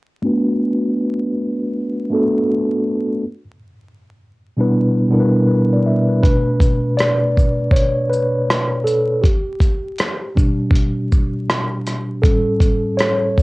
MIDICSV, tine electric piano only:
0, 0, Header, 1, 2, 480
1, 0, Start_track
1, 0, Key_signature, 2, "minor"
1, 0, Tempo, 750000
1, 148, Time_signature, 4, 2, 24, 8
1, 8591, End_track
2, 0, Start_track
2, 0, Title_t, "Tine electric piano"
2, 0, Program_c, 0, 4
2, 144, Note_on_c, 0, 57, 89
2, 149, Note_on_c, 0, 59, 81
2, 155, Note_on_c, 0, 62, 83
2, 160, Note_on_c, 0, 66, 77
2, 168, Note_on_c, 0, 71, 89
2, 251, Control_c, 0, 64, 127
2, 824, Note_off_c, 0, 57, 0
2, 826, Note_off_c, 0, 59, 0
2, 829, Note_off_c, 0, 62, 0
2, 832, Note_off_c, 0, 66, 0
2, 836, Note_off_c, 0, 71, 0
2, 1342, Note_on_c, 0, 57, 79
2, 1348, Note_on_c, 0, 59, 63
2, 1354, Note_on_c, 0, 62, 68
2, 1360, Note_on_c, 0, 66, 68
2, 1367, Note_on_c, 0, 69, 78
2, 2023, Note_off_c, 0, 57, 0
2, 2026, Note_off_c, 0, 59, 0
2, 2029, Note_off_c, 0, 62, 0
2, 2032, Note_off_c, 0, 66, 0
2, 2035, Note_off_c, 0, 69, 0
2, 2076, Control_c, 0, 64, 0
2, 2204, Control_c, 0, 64, 127
2, 2921, Note_on_c, 0, 47, 66
2, 2927, Note_on_c, 0, 55, 66
2, 2932, Note_on_c, 0, 59, 68
2, 2937, Note_on_c, 0, 62, 64
2, 2942, Note_on_c, 0, 64, 64
2, 2947, Note_on_c, 0, 71, 76
2, 3176, Note_off_c, 0, 47, 0
2, 3179, Note_off_c, 0, 55, 0
2, 3181, Note_off_c, 0, 59, 0
2, 3183, Note_off_c, 0, 62, 0
2, 3186, Note_off_c, 0, 64, 0
2, 3189, Note_off_c, 0, 71, 0
2, 3259, Note_on_c, 0, 47, 75
2, 3266, Note_on_c, 0, 55, 76
2, 3270, Note_on_c, 0, 59, 60
2, 3273, Note_on_c, 0, 62, 66
2, 3280, Note_on_c, 0, 64, 66
2, 3285, Note_on_c, 0, 70, 64
2, 3328, Note_off_c, 0, 70, 0
2, 3328, Note_on_c, 0, 71, 79
2, 3496, Note_off_c, 0, 71, 0
2, 3504, Note_on_c, 0, 71, 57
2, 3646, Note_off_c, 0, 71, 0
2, 3666, Note_on_c, 0, 74, 56
2, 3750, Note_off_c, 0, 74, 0
2, 3752, Note_on_c, 0, 76, 60
2, 3767, Note_off_c, 0, 47, 0
2, 3770, Note_off_c, 0, 55, 0
2, 3773, Note_off_c, 0, 59, 0
2, 3774, Note_off_c, 0, 62, 0
2, 3777, Note_off_c, 0, 64, 0
2, 3890, Note_off_c, 0, 76, 0
2, 3897, Note_on_c, 0, 71, 53
2, 3978, Note_off_c, 0, 71, 0
2, 3986, Note_on_c, 0, 71, 83
2, 3987, Note_on_c, 0, 47, 47
2, 3991, Note_on_c, 0, 57, 48
2, 3994, Note_on_c, 0, 62, 53
2, 3997, Control_c, 0, 64, 0
2, 4112, Control_c, 0, 64, 127
2, 4462, Note_on_c, 0, 74, 109
2, 4482, Note_off_c, 0, 71, 0
2, 4920, Note_off_c, 0, 74, 0
2, 4941, Note_on_c, 0, 73, 98
2, 5181, Note_on_c, 0, 71, 85
2, 5192, Note_off_c, 0, 73, 0
2, 5660, Note_on_c, 0, 69, 84
2, 5679, Note_off_c, 0, 71, 0
2, 5882, Note_off_c, 0, 47, 0
2, 5884, Note_off_c, 0, 57, 0
2, 5886, Note_off_c, 0, 62, 0
2, 5898, Note_on_c, 0, 67, 70
2, 5912, Note_off_c, 0, 69, 0
2, 5918, Control_c, 0, 64, 0
2, 6031, Control_c, 0, 64, 127
2, 6358, Note_off_c, 0, 67, 0
2, 6626, Note_on_c, 0, 47, 55
2, 6629, Note_on_c, 0, 55, 47
2, 6632, Note_on_c, 0, 62, 60
2, 7321, Note_off_c, 0, 47, 0
2, 7323, Note_off_c, 0, 55, 0
2, 7325, Note_off_c, 0, 62, 0
2, 7820, Note_on_c, 0, 69, 82
2, 7824, Note_on_c, 0, 45, 51
2, 7828, Note_on_c, 0, 55, 49
2, 7832, Note_on_c, 0, 61, 49
2, 7836, Control_c, 0, 64, 0
2, 7959, Control_c, 0, 64, 127
2, 8302, Note_on_c, 0, 73, 94
2, 8319, Note_off_c, 0, 69, 0
2, 8521, Note_off_c, 0, 45, 0
2, 8522, Note_off_c, 0, 55, 0
2, 8525, Note_off_c, 0, 61, 0
2, 8591, Note_off_c, 0, 73, 0
2, 8591, End_track
0, 0, End_of_file